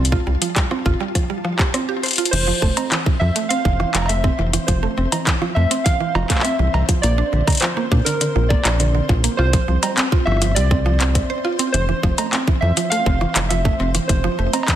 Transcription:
Already playing: C2 C4 F4 A5
0.05 closed hi-hat
0.12 F4, kick, cross-stick
0.27 C2 G3
0.42 F3, closed hi-hat
0.56 G3, kick, clap, closed hi-hat
0.71 C4, cross-stick
0.86 G1 F4, kick
1.00 G3
1.15 F3, kick, cross-stick, closed hi-hat
1.30 G3
1.45 F3
1.59 G4, kick, clap
1.74 C4, cross-stick, closed hi-hat
1.89 G4
2.03 C5, closed hi-hat
2.06 closed hi-hat
2.08 closed hi-hat
2.11 closed hi-hat
2.13 closed hi-hat
2.16 F4, closed hi-hat
2.18 closed hi-hat
2.25 closed hi-hat
2.31 F1 E3 C4 C5, closed hi-hat, crash
2.48 F3
2.62 F1 A3, kick
2.77 C4, closed hi-hat, cowbell
2.92 E3, cross-stick, clap, closed hi-hat
3.06 E3, kick
3.20 F2 F3 E5
3.36 A3, closed hi-hat
3.49 C4 F5, closed hi-hat
3.65 F1 E3, kick
3.80 E3, cross-stick
3.95 F1 F3, clap, closed hi-hat, cowbell
3.98 cowbell
4.02 cowbell
4.06 A3 E5, closed hi-hat, cowbell
4.24 C4, kick
4.39 F1 E3
4.53 E3, cross-stick, closed hi-hat
4.67 F1 F3 C5, kick, closed hi-hat
4.83 A3
4.98 F1 C4
5.12 E3, closed hi-hat, cowbell
5.27 E3, kick, clap, closed hi-hat
5.42 F3, cross-stick
5.55 F2 A3 E5
5.71 C4, closed hi-hat
5.84 E3 F5, kick, closed hi-hat
6.00 E3
6.15 F1 F3, cross-stick, cowbell
6.19 cross-stick
6.23 cross-stick
6.26 A3, kick, cross-stick, clap, closed hi-hat
6.35 clap
6.40 E5, clap
6.45 C4, closed hi-hat
6.59 C2 E3
6.74 C2 E3, cowbell
6.89 F3, kick, closed hi-hat
7.02 A#1 A#3 D5, cross-stick, closed hi-hat
7.18 D4
7.33 A#1 D3
7.47 D3, kick, closed hi-hat, cowbell
7.50 closed hi-hat
7.52 closed hi-hat
7.55 closed hi-hat
7.57 closed hi-hat
7.60 F3 C5, clap, closed hi-hat
7.62 closed hi-hat
7.77 A#3, cross-stick
7.92 A#2 D4, kick
8.05 D3 A#4, closed hi-hat
8.21 D3, closed hi-hat
8.36 A#1 F3
8.49 A#3 D5, kick
8.65 A#1 D4, cross-stick, clap, closed hi-hat, cowbell
8.80 D3, closed hi-hat
8.95 D3
9.09 A#1 F3, kick
9.24 A#3, closed hi-hat
9.37 C2 F4 C5, cross-stick
9.53 F3, kick, closed hi-hat
9.68 C2 F3
9.83 G3, closed hi-hat, cowbell
9.98 C4, clap, closed hi-hat
10.12 F4, kick
10.25 G1 F3 E5, cross-stick
10.32 cross-stick
10.37 cross-stick
10.42 F3, cross-stick, closed hi-hat
10.47 cross-stick
10.51 D5, cross-stick
10.56 C2 G3, closed hi-hat
10.71 C4, kick
10.86 F3
11.00 C4, cross-stick, clap, closed hi-hat
11.15 C4, kick, closed hi-hat
11.30 C5
11.45 F4
11.59 C4, closed hi-hat
11.72 F1 E3 C5, closed hi-hat
11.89 E3
12.03 F1 F3, kick
12.18 A3, closed hi-hat, cowbell
12.33 C4, cross-stick, clap, closed hi-hat
12.48 E3, kick
12.61 F2 E3 E5
12.77 F3, closed hi-hat
12.90 A3 F5, closed hi-hat
13.06 F1 C4, kick
13.21 E3, cross-stick
13.36 F1 E3, clap, closed hi-hat, cowbell, shaker
13.49 F3 E5, closed hi-hat
13.65 A3, kick
13.80 F1 C4
13.95 E3, cross-stick, closed hi-hat
14.08 F1 E3 C5, kick, closed hi-hat
14.24 F3
14.39 F1 A3
14.53 C4, closed hi-hat, cowbell
14.63 cowbell
14.68 E3, kick, clap, closed hi-hat

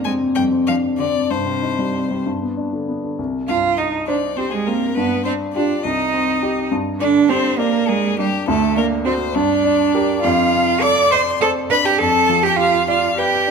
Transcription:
Already playing: F2 C3 C4 D4
0.04 G#3 C4 G#5
0.20 C3
0.35 F2 G3 G5
0.51 C4
0.67 F3 D4 F5
0.83 C3
0.98 D3 C4 D5
1.15 C3
1.31 G2 C3 C5
1.46 C4
1.62 D#4
1.79 G3
1.95 C4
2.11 G3
2.26 G2
2.42 B3
2.57 D4
2.73 D3
2.88 B3
3.04 D3
3.19 C2
3.48 G2 F4 F5
3.77 D#4 D#5
4.07 D4 C5 D5
4.36 C4 G4 C5
4.51 G#3 G#4
4.66 A#3 C4 A#4
4.95 G2 B3 B4
5.24 C4 D4 C5
5.54 D4 F4 G4 D5
5.83 C2 D#4 D#5
6.14 C4
6.42 D#4 G4
6.71 G2
7.00 D3 D4 D5
7.29 C4 G4 C5
7.58 A#3 A#4 D5
7.87 G#3 G#4 A#4
8.17 G3 D4 G4
8.47 D2 A3 A4
8.75 A#3 D4 A#4
9.05 C4 F#4 C5
9.33 G2 D4 D5
9.65 D4
9.95 G4 A#4
10.22 F2 F4 F5
10.53 C3
10.81 A4 D5 D6
11.12 C5 D5 C6
11.41 A4 C5 A5
11.70 D4 B4 B5
11.85 G4 G5
11.98 F2 A4 A5
12.29 F3
12.43 G4 G5
12.57 F4 G4 F5
12.87 F4 D5 F5
13.16 G4 B4 G5
13.47 D4

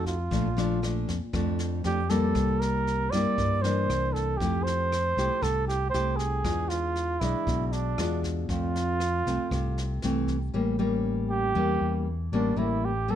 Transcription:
Already playing: F2 A3 D#4 F#4
0.06 F4, kick, snare
0.31 A#1 A#2 F3 A3 D4, kick, snare
0.57 F3 A3 D4, snare
0.82 F3 A3 D4, cross-stick, snare
1.08 F2, kick, snare
1.33 F2 F3 A3 D4, kick, cross-stick, snare
1.59 snare
1.84 F2 F3 A3 D4 G4, snare
2.09 G3 A#3 E4 A4, kick, snare
2.35 C2 C3, kick, cross-stick, snare
2.60 A#4, snare
2.87 snare
3.11 G2 G3 D5, kick, cross-stick, snare
3.15 A#3 E4
3.38 G2, kick, snare
3.62 E3 A#3 D4 C5, snare
3.88 C2, cross-stick, snare
4.13 A4, kick, snare
4.37 F2 F3 G4, kick, snare
4.41 A3 E4 G4
4.63 C5, snare
4.92 cross-stick, snare
5.17 C2 A3 E4 G4, kick, snare
5.42 C2 C3 A4, kick, cross-stick, snare
5.68 G4, snare
5.90 C5
5.94 C2 A3 E4 G4, snare
6.17 G#4, kick, snare
6.44 E2 E3 G#3 D4 F4, kick, cross-stick, snare
6.69 F4, snare
6.96 snare
7.20 B1 G#3 D4 E4, kick, cross-stick, snare
7.47 B1 B2, kick, snare
7.67 E4
7.72 D4, snare
7.98 E2 G#3 D4 F4, cross-stick, snare
8.23 kick, snare
8.49 F2 A3 C4 F4, kick, snare
8.76 snare
9.00 cross-stick, snare
9.26 C2 A3 C4, kick, snare
9.51 C2 C3, kick, cross-stick, snare
9.78 snare
10.02 C2 E3 A3 C4, snare
10.28 kick, snare
10.54 A1 A2 G3 A#3 C#4
10.79 G3 A#3 C#4
11.30 G4
11.55 E2 E3 G3 A#3 C#4
11.81 E2
12.32 A1 G3 A#3 C#4 D4
12.56 A1 A2 G3 A#3 C#4 E4
12.85 G4
13.08 G3 A#3 C#4 A4

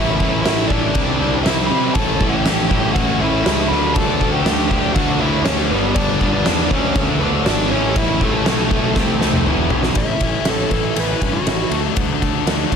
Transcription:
Already playing: A1 A2 E3 A3 C#4 E4 E5
0.16 A1 E5, kick
0.21 A2 E3 A3 C#4 E4
0.42 A2 E3 A3 C#4 E4 E5, snare, crash
0.46 A1 E4
0.67 A2 E3 A3 C#4 D5, kick
0.71 D4 E4
0.95 C2 C3 E3 G3 C4 E4, kick, crash
1.20 C2 C3 E3 G3 C4 E4
1.43 C2 C3 E3 G3 C4 E4 E5, snare, crash
1.66 C3 B5
1.71 C3 E3 G3 C4 E4 B4
1.93 A1 A2 E3 A3 C#4 E4 A5, kick, crash
1.97 A4
2.20 A1 A2 E3 A3 C#4 E4, kick
2.29 G5
2.33 G4
2.45 A1 A2 E3 A3 C#4 E4, snare, crash
2.70 A1 A2 E3 A3 C#4 E4, kick
2.93 A1 A2 E3 A3 C#4 E4 F#4 F#5, kick, crash
3.20 A1 A2 E3 A3 C#4 E4 E5
3.44 C#2 A2 E3 A3 C#4 E4 E5, snare, crash
3.49 E4
3.68 D2 D3 F#3 A3 D4 B5
3.73 B4
3.94 D2 D3 F#3 A3 D4 A5, kick, crash
3.98 A4
4.20 D2 D3 F#3 A3 D4, kick
4.33 G4 G5
4.45 D2 D3 F#3 A3 D4, snare, crash
4.70 D3 F#3 A3 D4, kick
4.94 D2 D3 F#3 A3 D4 F#4 F#5, kick, crash
5.19 D2 D3 F#3 A3 D4 E4 E5
5.45 D2 D3 F#3 A3 C#4 D4 C#5, snare, crash
5.71 G1 G2 D3 G3 B3 D4 B4
5.94 G1 G2 D3 G3 B3 D4 D5, kick, crash
6.20 G1 G2 D3 G3 B3 D4, kick
6.33 D4 D5
6.45 E2 G2 D3 G3 B3 D4, snare, crash
6.71 D2 D3 F#3 A3 C#4 D4 C#5, kick
6.95 D2 D3 F#3 A3 C#4 D4 C#5, kick, crash
7.20 D2 D3 F#3 A3 B3 D4 B4
7.46 G#1 D3 F#3 A3 D4 D5, snare, crash
7.71 A1 A2 E3 A3 C#4 E4 C#5
7.96 A1 A2 E3 A3 C#4 E4 E5, kick, crash
8.21 A1 A2 E3 A3 C#4 E4 A4, kick
8.25 A3
8.46 B1 A2 E3 A3 C#4 E4, snare, crash
8.71 A2 E3 A3 C#4 E4, kick
8.96 C2 C3 E3 G3 C4 E4, kick, snare
9.21 C2 C3 E3 G3 C4 E4, snare
9.33 mid tom
9.45 E1 E2 B2 E3 F#3 B3 E4, mid tom
9.70 B1 E2 B2 E3 F#3 B3 E4, floor tom
9.83 snare
9.95 A1 A2 E3 A3 C#4 E4 E5, kick, ride
10.20 A1 A2 E3 A3 C#4 E4, kick, ride
10.45 A1 A2 E3 A3 C#4 E4 A4, snare, ride
10.71 A1 A2 E3 A3 C#4 E4, kick, ride
10.95 A1 A2 E3 A3 B3 C#4 E4, ride
11.00 B4
11.21 G2 A2 E3 A3 C#4 E4, kick, ride
11.33 F#4
11.45 A1 A2 E3 A3 C#4 E4, snare, ride
11.70 D2 D3 F#3 A3 D4, ride
11.96 D2 D3 F#3 A3 D4, kick, ride
12.21 D2 D3 F#3 A3 D4, kick, ride
12.46 D2 D3 F#3 A3 D4, snare, ride
12.72 D2 D3 F#3 A3, kick, ride

